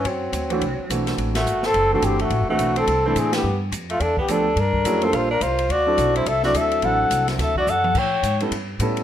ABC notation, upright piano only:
X:1
M:4/4
L:1/8
Q:"Swing" 1/4=213
K:Dmix
V:1 name="Upright piano"
z3 [E,A,CDF] z2 [E,A,CDF]2- | [E,A,CDF] z4 [E,A,CDF]3 | z [E,A,CDF]3 z [E,A,CDE]3 | z6 [=F,A,B,DG] z |
z2 [F,A,^CE^G] [=G,_B,D=FA]2 z3 | z [F,CDEA]3 z [F,CDEA]3 | [F,CDEA]4- [F,CDEA] z3 | z3 [G,B,^CEA] z2 [G,B,CEA]2 |]